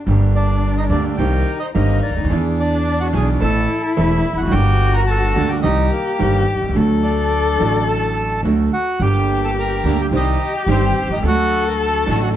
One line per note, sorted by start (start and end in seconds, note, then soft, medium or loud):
0.06 0.87 G1 loud
0.06 0.88 G1 medium
0.06 0.88 G2 medium
0.06 0.87 D3 medium
0.06 0.87 G3 medium
0.06 0.88 A#3 medium
0.06 1.20 D4 medium
0.11 0.89 G4 medium
0.36 0.75 D4 medium
0.36 0.75 D5 loud
0.78 0.85 D#4 medium
0.78 0.84 D#5 medium
0.90 1.14 D2 loud
0.90 1.15 D2 medium
0.90 1.15 D3 medium
0.90 1.15 G3 medium
0.90 1.15 A#3 medium
0.90 1.04 D4 medium
0.90 1.15 G4 medium
0.90 1.03 D5 medium
1.17 1.42 C2 loud
1.17 1.43 C2 medium
1.17 1.43 C3 medium
1.17 1.43 D#3 medium
1.17 1.43 A#3 medium
1.17 1.43 C4 medium
1.17 1.74 D#4 medium
1.17 1.43 G4 medium
1.17 1.59 G4 medium
1.17 1.62 A#4 medium
1.17 1.57 G5 loud
1.60 1.68 D#4 medium
1.60 1.74 C5 medium
1.60 1.66 D#5 loud
1.74 1.99 G1 loud
1.74 1.98 G2 loud
1.74 1.98 D#3 medium
1.74 1.99 A#3 medium
1.74 2.14 A#3 medium
1.74 1.99 C4 medium
1.74 2.33 D#4 loud
1.74 1.98 G4 medium
1.74 2.14 A#4 medium
1.74 2.01 D#5 loud
2.02 2.41 D5 loud
2.10 2.17 C#2 medium
2.10 2.16 C#2 medium
2.17 2.24 D2 medium
2.24 2.31 D#2 medium
2.24 2.30 D#2 medium
2.29 3.10 E2 medium
2.29 3.10 E2 loud
2.29 2.30 E3 medium
2.29 3.10 E3 medium
2.29 3.10 B3 medium
2.29 3.11 D4 medium
2.29 3.44 D4 loud
2.29 3.11 G#4 medium
2.60 2.99 D4 medium
2.60 3.03 D5 medium
3.00 3.08 F#4 medium
3.00 3.07 F#5 medium
3.13 3.37 B1 loud
3.13 3.38 B1 loud
3.13 3.37 B2 medium
3.13 3.37 E3 medium
3.13 3.37 B3 medium
3.13 3.37 D4 medium
3.13 3.37 G#4 medium
3.13 3.29 G#4 medium
3.13 3.27 G#5 loud
3.40 3.65 A1 medium
3.40 3.66 A1 loud
3.40 3.65 A2 loud
3.40 3.65 E3 medium
3.40 3.65 A3 medium
3.40 3.65 C4 medium
3.40 4.55 E4 loud
3.40 3.65 A4 medium
3.40 3.82 A4 medium
3.40 3.80 A5 loud
3.83 3.92 A4 medium
3.83 3.89 A5 loud
3.97 4.21 E1 loud
3.97 4.22 E1 medium
3.97 4.21 E2 loud
3.97 4.21 E3 medium
3.97 4.21 A3 medium
3.97 4.21 C4 medium
3.97 4.38 E4 medium
3.97 4.21 A4 medium
3.97 4.40 E5 medium
4.32 4.40 E1 medium
4.32 4.39 E2 medium
4.38 4.46 F1 medium
4.38 4.47 F2 medium
4.38 4.51 F#5 medium
4.42 4.53 F#2 medium
4.42 4.54 F#4 medium
4.47 4.53 F#1 medium
4.47 5.31 D3 medium
4.47 5.31 G3 medium
4.51 5.32 G1 loud
4.51 5.33 G1 loud
4.51 5.32 G2 medium
4.51 5.32 A#3 medium
4.51 5.64 F#4 loud
4.51 4.93 G4 medium
4.51 5.33 A#4 medium
4.51 4.96 G5 loud
4.94 5.03 A#4 medium
4.94 5.00 A#5 loud
5.07 5.49 A4 medium
5.07 5.51 A5 loud
5.35 5.60 D2 medium
5.35 5.60 D2 loud
5.35 5.60 D3 loud
5.35 5.60 G3 medium
5.35 5.60 A#3 medium
5.35 5.60 G4 medium
5.49 5.58 G4 medium
5.49 5.56 G5 loud
5.62 5.87 C2 loud
5.62 5.88 C2 loud
5.62 5.87 C3 medium
5.62 5.87 D#3 medium
5.62 5.87 G3 medium
5.62 5.88 C4 medium
5.62 5.91 D#4 medium
5.62 5.88 G4 medium
5.62 6.78 G4 loud
5.62 5.92 D#5 loud
5.91 6.44 A#3 medium
5.91 6.43 A#4 medium
6.19 6.43 G1 loud
6.19 6.44 G1 loud
6.19 6.43 G2 medium
6.19 6.43 D#3 medium
6.19 6.43 G3 medium
6.19 6.44 C4 medium
6.19 6.43 G4 medium
6.54 6.62 B1 medium
6.61 6.69 C2 medium
6.69 6.76 C#2 medium
6.69 6.75 C#2 medium
6.74 7.56 D2 loud
6.74 7.56 D2 medium
6.74 7.56 D3 medium
6.74 7.55 F#3 medium
6.74 7.56 A3 medium
6.74 8.73 A4 loud
6.78 7.57 F#4 medium
7.03 7.84 D4 medium
7.03 7.84 D5 medium
7.58 8.40 A1 loud
7.58 8.40 A2 medium
7.58 8.39 D3 medium
7.58 8.40 F#3 medium
7.58 8.40 A3 medium
7.58 8.41 F#4 medium
7.89 8.41 A4 medium
7.89 8.41 A5 loud
8.43 8.67 D2 medium
8.43 8.68 D2 medium
8.43 8.68 D3 loud
8.43 8.68 F#3 medium
8.43 8.68 A3 medium
8.43 8.68 F#4 medium
8.73 8.99 F#4 medium
8.73 9.02 F#5 medium
9.00 9.80 G1 loud
9.00 9.81 G1 medium
9.00 9.81 G2 medium
9.00 9.80 D3 medium
9.00 9.80 G3 medium
9.00 9.81 A#3 medium
9.00 9.81 D4 medium
9.00 10.09 G4 loud
9.00 9.81 G4 medium
9.00 9.40 G4 medium
9.00 9.82 G4 medium
9.00 9.40 G5 loud
9.45 9.51 A4 medium
9.45 9.50 A5 medium
9.60 9.97 A#4 medium
9.60 10.02 A#5 loud
9.84 10.08 D2 medium
9.84 10.08 D3 medium
9.84 10.08 G3 medium
9.84 10.08 A#3 medium
9.84 10.09 A#3 medium
9.84 10.09 D4 medium
9.84 10.09 G4 medium
10.01 10.07 G4 medium
10.01 10.07 G5 loud
10.11 10.35 C2 loud
10.11 10.36 C2 medium
10.11 10.36 C3 medium
10.11 10.36 D#3 medium
10.11 10.36 G3 medium
10.11 10.36 C4 medium
10.11 10.36 D#4 medium
10.11 11.26 G4 loud
10.11 10.36 G4 medium
10.11 10.41 C5 medium
10.16 10.53 D#4 medium
10.16 10.53 D#5 loud
10.39 10.66 D#5 loud
10.57 10.63 G4 medium
10.57 10.63 G5 loud
10.67 10.91 G1 loud
10.67 10.92 G1 medium
10.67 10.92 G2 loud
10.67 10.92 D#3 medium
10.67 10.92 G3 medium
10.67 10.92 C4 medium
10.67 10.92 D#4 medium
10.67 10.92 G4 medium
10.67 11.26 G5 loud
10.71 11.09 C4 medium
10.71 11.09 C5 medium
11.03 11.08 B1 medium
11.03 11.10 B1 medium
11.09 11.16 C2 medium
11.09 11.17 C2 medium
11.09 11.18 D#4 medium
11.13 11.22 C#2 medium
11.13 11.19 D#5 medium
11.17 11.24 C#2 medium
11.17 11.23 D3 medium
11.23 12.03 D2 loud
11.23 12.04 D2 loud
11.23 12.03 D3 medium
11.23 12.03 F#3 medium
11.23 12.03 A3 medium
11.23 12.04 A3 medium
11.23 12.04 D4 medium
11.23 12.04 F#4 loud
11.23 12.04 F#4 medium
11.23 12.36 A4 loud
11.27 11.65 F#4 medium
11.27 11.69 F#5 loud
11.68 11.74 A#4 medium
11.68 11.74 A#5 medium
11.81 12.20 A4 medium
11.81 12.20 A5 loud
12.06 12.31 A1 medium
12.06 12.31 A1 loud
12.06 12.31 A2 loud
12.06 12.30 D3 medium
12.06 12.31 F#3 medium
12.06 12.31 A3 medium
12.06 12.31 D4 medium
12.06 12.31 F#4 medium
12.23 12.29 F#4 medium
12.23 12.29 F#5 loud